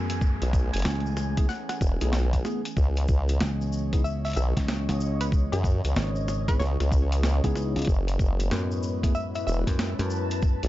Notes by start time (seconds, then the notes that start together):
Already playing: F#2 E3 A3 B3 G#4 G#5, downlifter
0.10 closed hi-hat, shaker
0.21 C#4, kick, shaker
0.42 B1, closed hi-hat, shaker
0.53 kick, shaker
0.73 F#1 G#5, closed hi-hat, shaker
0.77 closed hi-hat
0.79 closed hi-hat
0.82 snare, closed hi-hat, shaker
0.85 C#2, closed hi-hat
0.90 closed hi-hat
0.95 closed hi-hat
1.00 closed hi-hat
1.06 shaker
1.17 snare, shaker
1.37 A3 B3 E4 G#4, kick, closed hi-hat, shaker
1.49 F#5, snare, shaker
1.69 F#5, snare, closed hi-hat, shaker
1.81 E1, kick, shaker
2.01 B1 A3 B3 E4 G#4, closed hi-hat, shaker
2.13 snare, shaker
2.33 kick, closed hi-hat, shaker
2.45 A3 B3 E4 G#4, snare, shaker
2.65 closed hi-hat, shaker
2.77 C#2 C#3 B3 D#5, kick, shaker
2.96 closed hi-hat, shaker
3.08 C#2, kick, shaker
3.29 closed hi-hat, shaker
3.41 C#2 C#5, snare, shaker
3.61 shaker
3.73 shaker
3.93 B3 D#4 E4 G#4, kick, closed hi-hat, shaker
4.04 E5, shaker
4.13 D#5
4.25 E5, closed hi-hat, shaker
4.26 closed hi-hat
4.28 closed hi-hat
4.30 closed hi-hat
4.32 closed hi-hat
4.33 closed hi-hat
4.35 B1 E5, closed hi-hat, shaker
4.57 C#2, kick, snare, closed hi-hat, shaker
4.68 snare, shaker
4.89 C#2, snare, closed hi-hat, shaker
5.01 shaker
5.21 B4, closed hi-hat, shaker
5.32 C#4, kick, shaker
5.52 F#2 G#4, closed hi-hat, shaker
5.64 kick, shaker
5.85 C#2, closed hi-hat, shaker
5.96 G#1, snare, shaker
6.16 shaker
6.28 snare, shaker
6.48 B3 D#4 E4 G#4 B4, kick, closed hi-hat, shaker
6.60 C#2 C#5, snare, shaker
6.80 C#2, snare, closed hi-hat, shaker
6.92 kick, shaker
7.12 closed hi-hat, shaker
7.23 snare, shaker
7.44 C#2 B3 D#4 E4 G#4, kick, closed hi-hat, shaker
7.56 snare, shaker
7.76 C#2, closed hi-hat, shaker
7.79 closed hi-hat
7.82 closed hi-hat
7.85 F#1 A2 G#3 B3 E4, kick, closed hi-hat, shaker
8.08 closed hi-hat, shaker
8.18 F#1 B4, kick, shaker
8.40 closed hi-hat, shaker
8.51 F#2, snare, shaker
8.71 shaker
8.83 shaker
9.03 A3 B3 E4 G#4, kick, closed hi-hat, shaker
9.15 E5, shaker
9.35 E5, closed hi-hat, shaker
9.47 E1 E5, shaker
9.63 A5
9.67 F#2, kick, snare, closed hi-hat, shaker
9.79 snare, shaker
9.99 F#2, snare, closed hi-hat, shaker
10.10 shaker
10.31 closed hi-hat, shaker
10.42 kick, shaker
10.63 B1, closed hi-hat, shaker